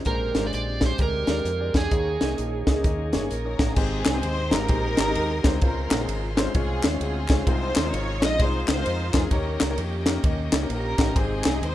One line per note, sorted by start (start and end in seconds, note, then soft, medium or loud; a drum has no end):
0.00 1.88 G#3 medium
0.05 0.31 A#1 loud
0.05 0.78 A#2 medium
0.05 1.90 D3 medium
0.05 0.28 G#3 medium
0.05 1.91 G#3 medium
0.05 1.90 C4 medium
0.05 0.28 D4 medium
0.05 1.90 D4 medium
0.05 0.28 G4 medium
0.05 1.90 G4 medium
0.05 1.91 G4 medium
0.05 0.45 A#4 medium
0.05 0.28 C5 medium
0.05 kick medium
0.05 closed hi-hat medium
0.35 0.50 G#1 medium
0.35 0.67 G#3 medium
0.35 0.67 D4 medium
0.35 0.67 G4 medium
0.35 0.67 C5 medium
0.35 snare medium
0.35 closed hi-hat medium
0.47 0.53 D5 medium
0.53 0.92 A#1 medium
0.53 0.85 D5 medium
0.53 closed hi-hat medium
0.81 0.94 G#3 medium
0.81 0.94 D4 medium
0.81 0.95 G4 medium
0.81 0.95 C5 medium
0.81 kick medium
0.81 snare loud
0.81 closed hi-hat medium
0.86 1.00 C5 medium
0.98 1.24 D2 medium
0.98 1.20 G#3 medium
0.98 1.21 D4 medium
0.98 1.21 G4 medium
0.98 1.21 A#4 medium
0.98 kick loud
0.98 closed hi-hat medium
1.02 1.78 A#4 medium
1.27 1.43 D#2 medium
1.27 1.48 G#3 medium
1.27 1.48 D4 medium
1.27 1.48 G4 medium
1.27 1.49 D5 medium
1.27 snare loud
1.27 closed hi-hat medium
1.45 1.70 F2 medium
1.45 closed hi-hat medium
1.59 1.85 G#3 medium
1.59 1.85 D4 medium
1.59 1.85 G4 medium
1.59 1.85 D5 medium
1.74 1.89 E2 medium
1.74 3.28 G#4 medium
1.74 kick medium
1.74 snare loud
1.74 closed hi-hat medium
1.91 2.17 D#2 loud
1.91 3.75 D#3 medium
1.91 2.63 D#3 medium
1.91 2.13 A#3 medium
1.91 3.75 A#3 medium
1.91 3.75 C#4 medium
1.91 3.75 D#4 medium
1.91 2.14 D#4 medium
1.91 3.75 G#4 medium
1.91 2.13 G#4 medium
1.91 3.75 G#4 medium
1.91 2.14 C#5 medium
1.91 kick medium
1.91 closed hi-hat medium
2.20 2.36 C2 medium
2.20 2.52 A#3 medium
2.20 2.52 D#4 medium
2.20 2.53 G#4 medium
2.20 2.53 D#5 medium
2.20 snare loud
2.20 closed hi-hat medium
2.38 2.63 A#1 medium
2.38 closed hi-hat medium
2.67 2.82 C#2 medium
2.67 2.80 A#3 medium
2.67 2.80 D#4 medium
2.67 2.80 G#4 medium
2.67 2.80 D#5 medium
2.67 kick medium
2.67 snare loud
2.67 closed hi-hat medium
2.83 3.16 D#2 medium
2.83 3.05 A#3 medium
2.83 3.06 D#4 medium
2.83 3.06 G#4 medium
2.83 3.06 D#5 medium
2.83 kick loud
2.83 closed hi-hat medium
3.12 3.28 G1 medium
3.12 3.33 A#3 medium
3.12 3.33 D#4 medium
3.12 3.34 G#4 medium
3.12 3.34 C#5 medium
3.12 snare medium
3.12 closed hi-hat medium
3.31 3.55 A#1 medium
3.31 3.74 C#4 medium
3.31 3.74 A#4 medium
3.31 closed hi-hat medium
3.45 3.70 A#3 medium
3.45 3.71 D#4 medium
3.45 3.71 G#4 medium
3.45 3.71 C#5 medium
3.59 3.74 A1 medium
3.59 kick medium
3.59 snare loud
3.59 closed hi-hat medium
3.75 4.01 G#1 loud
3.75 4.48 G#2 medium
3.75 4.08 G#3 medium
3.75 7.43 G#3 medium
3.75 4.65 C4 medium
3.75 4.08 C4 medium
3.75 4.51 D#4 medium
3.75 4.08 D#4 medium
3.75 4.08 G4 medium
3.75 4.23 G#4 loud
3.75 4.09 C5 medium
3.75 5.60 D#5 medium
3.75 5.61 G5 medium
3.75 5.60 C6 medium
3.75 kick loud
3.75 crash medium
4.05 4.21 C2 medium
4.05 snare loud
4.05 clap loud
4.05 ride medium
4.13 4.41 G#3 medium
4.13 4.41 C4 medium
4.13 4.41 D#4 medium
4.13 4.41 G4 medium
4.13 4.41 C5 medium
4.23 4.53 D#2 medium
4.23 4.52 C5 loud
4.23 ride medium
4.51 4.67 G#1 medium
4.51 4.65 G#3 medium
4.51 4.65 C4 medium
4.51 4.65 D#4 medium
4.51 5.58 D#4 medium
4.51 4.65 G4 medium
4.51 5.58 G4 medium
4.51 4.65 A#4 medium
4.51 5.62 A#4 loud
4.51 snare loud
4.51 clap medium
4.51 ride medium
4.68 4.94 A#1 loud
4.68 5.00 G#3 medium
4.68 5.00 C4 medium
4.68 5.00 D#4 medium
4.68 5.00 G4 medium
4.68 5.01 C5 medium
4.68 kick loud
4.68 ride medium
4.97 5.17 G#1 medium
4.97 snare loud
4.97 clap medium
4.97 ride medium
5.07 5.34 G#3 medium
5.07 5.34 C4 medium
5.07 5.34 D#4 medium
5.07 5.34 G4 medium
5.07 5.34 D#5 medium
5.15 5.41 D#2 medium
5.15 ride medium
5.44 5.59 D2 medium
5.44 5.58 G#3 medium
5.44 5.58 C4 medium
5.44 5.58 D#4 medium
5.44 5.58 G4 medium
5.44 5.58 C5 medium
5.44 kick loud
5.44 snare loud
5.44 clap medium
5.44 ride soft
5.61 5.87 C#2 loud
5.61 6.34 C#3 medium
5.61 5.93 G#3 medium
5.61 5.94 C4 medium
5.61 5.94 C#4 medium
5.61 5.94 F4 medium
5.61 6.51 F4 medium
5.61 6.34 A#4 medium
5.61 5.94 C5 medium
5.61 7.46 C5 medium
5.61 9.29 F5 medium
5.61 9.29 C6 medium
5.61 kick loud
5.61 ride medium
5.91 6.06 A#1 medium
5.91 snare loud
5.91 clap medium
5.91 ride medium
5.99 6.26 G#3 medium
5.99 6.26 C4 medium
5.99 6.26 C#4 medium
5.99 6.27 F4 medium
5.99 6.27 G#4 medium
6.08 6.47 G#1 medium
6.08 ride medium
6.37 6.50 G#3 medium
6.37 6.50 C4 medium
6.37 6.51 C#4 medium
6.37 6.51 F4 medium
6.37 6.51 C5 loud
6.37 snare loud
6.37 clap medium
6.37 ride soft
6.54 6.80 C2 loud
6.54 6.85 G#3 medium
6.54 6.85 C4 medium
6.54 7.01 C4 medium
6.54 6.86 C#4 medium
6.54 6.86 F4 medium
6.54 7.01 F4 medium
6.54 6.97 G#4 loud
6.54 6.86 C#5 medium
6.54 kick loud
6.54 ride medium
6.83 6.98 D#2 medium
6.83 snare loud
6.83 clap medium
6.83 ride medium
6.92 7.18 G#3 medium
6.92 7.19 C4 medium
6.92 7.19 C#4 medium
6.92 7.19 F4 medium
6.92 7.19 C#5 medium
7.01 7.25 D2 loud
7.01 7.44 C4 medium
7.01 7.44 F4 medium
7.01 7.44 G#4 loud
7.01 ride medium
7.28 7.44 C#2 medium
7.28 7.42 G#3 medium
7.28 7.42 C4 medium
7.28 7.43 C#4 medium
7.28 7.43 F4 medium
7.28 7.43 C#5 medium
7.28 kick loud
7.28 snare loud
7.28 clap medium
7.28 ride medium
7.46 7.72 C2 loud
7.46 8.18 C3 medium
7.46 7.78 G#3 medium
7.46 7.78 C4 medium
7.46 7.78 D#4 medium
7.46 8.35 D#4 medium
7.46 7.78 F4 medium
7.46 8.35 F4 medium
7.46 9.31 G#4 medium
7.46 7.93 C5 loud
7.46 7.78 C5 medium
7.46 11.75 D#5 medium
7.46 kick loud
7.46 ride medium
7.76 7.91 D#2 medium
7.76 snare loud
7.76 clap medium
7.76 ride medium
7.84 8.11 G#3 medium
7.84 8.11 C4 medium
7.84 8.11 D#4 medium
7.84 8.11 F4 medium
7.84 8.12 A#4 medium
7.93 8.23 G#1 medium
7.93 8.22 C#5 loud
7.93 ride medium
8.22 8.37 A#1 medium
8.22 8.35 G#3 medium
8.22 8.35 C4 medium
8.22 8.35 D#4 medium
8.22 8.35 F4 medium
8.22 8.40 D#5 loud
8.22 8.35 D#5 medium
8.22 snare loud
8.22 clap medium
8.22 ride soft
8.39 8.64 C2 medium
8.39 8.70 G#3 medium
8.39 8.71 C4 medium
8.39 8.71 D#4 medium
8.39 8.68 D#4 medium
8.39 8.71 F4 medium
8.39 8.67 F4 medium
8.39 8.71 G#4 medium
8.39 8.68 C5 loud
8.39 kick loud
8.39 ride medium
8.68 8.83 C#2 medium
8.68 9.28 D#4 medium
8.68 9.28 F4 medium
8.68 9.12 C5 loud
8.68 snare loud
8.68 clap medium
8.68 ride medium
8.77 9.03 G#3 medium
8.77 9.03 C4 medium
8.77 9.03 D#4 medium
8.77 9.04 F4 medium
8.77 9.04 A#4 medium
8.86 9.11 F2 medium
8.86 ride medium
9.14 9.29 E2 medium
9.14 9.27 G#3 medium
9.14 9.27 C4 medium
9.14 9.27 D#4 medium
9.14 9.27 F4 medium
9.14 9.32 G#4 medium
9.14 9.27 A#4 medium
9.14 kick loud
9.14 snare loud
9.14 clap medium
9.14 ride soft
9.31 9.56 D#2 loud
9.31 10.03 D#3 medium
9.31 9.63 A#3 medium
9.31 9.77 C#4 medium
9.31 9.63 C#4 medium
9.31 9.63 D#4 medium
9.31 9.79 G4 medium
9.31 9.64 G4 medium
9.31 11.14 A#4 medium
9.31 9.69 A#4 medium
9.31 11.14 C#5 medium
9.31 9.64 C#5 medium
9.31 11.75 G5 medium
9.31 kick medium
9.31 ride medium
9.60 9.75 C#2 medium
9.60 snare loud
9.60 clap loud
9.60 ride medium
9.69 9.96 A#3 medium
9.69 9.96 C#4 medium
9.69 9.96 D#4 medium
9.69 9.96 G4 medium
9.69 9.77 A#4 medium
9.69 9.96 C#5 medium
9.78 10.17 F2 medium
9.78 10.66 A#3 medium
9.78 10.66 C#4 medium
9.78 10.25 G4 medium
9.78 ride medium
10.06 10.20 A#3 medium
10.06 10.20 C#4 medium
10.06 10.20 D#4 medium
10.06 10.20 G4 medium
10.06 10.21 A#4 medium
10.06 snare loud
10.06 clap medium
10.06 ride medium
10.24 10.49 D#2 medium
10.24 10.55 A#3 medium
10.24 10.55 C#4 medium
10.24 10.56 D#4 medium
10.24 10.56 G4 medium
10.24 10.56 D#5 medium
10.24 kick loud
10.24 ride medium
10.52 10.67 C#2 loud
10.52 snare loud
10.52 clap medium
10.52 ride medium
10.61 10.88 A#3 medium
10.61 10.88 C#4 medium
10.61 10.88 D#4 medium
10.61 10.89 G4 medium
10.61 10.89 A#4 medium
10.69 10.95 A#1 medium
10.69 11.13 C#4 medium
10.69 11.13 G4 medium
10.69 11.13 A#4 loud
10.69 ride medium
10.98 11.13 A1 medium
10.98 11.12 A#3 medium
10.98 11.12 C#4 medium
10.98 11.12 D#4 medium
10.98 11.12 G4 medium
10.98 11.12 D#5 medium
10.98 kick loud
10.98 snare loud
10.98 clap medium
10.98 ride medium
11.15 11.41 G#1 loud
11.15 11.75 G#2 medium
11.15 11.47 G#3 medium
11.15 11.47 C4 medium
11.15 11.75 C4 medium
11.15 11.47 D#4 medium
11.15 11.75 D#4 medium
11.15 11.47 G4 medium
11.15 11.75 G#4 medium
11.15 11.63 G#4 loud
11.15 11.47 C5 medium
11.15 11.75 C6 medium
11.15 kick loud
11.15 ride medium
11.44 11.60 C2 medium
11.44 snare loud
11.44 clap medium
11.44 ride medium
11.52 11.75 G#3 medium
11.52 11.75 C4 medium
11.52 11.75 D#4 medium
11.52 11.75 G4 medium
11.52 11.75 D#5 medium
11.61 11.75 D#2 loud
11.61 11.75 C5 loud
11.61 ride medium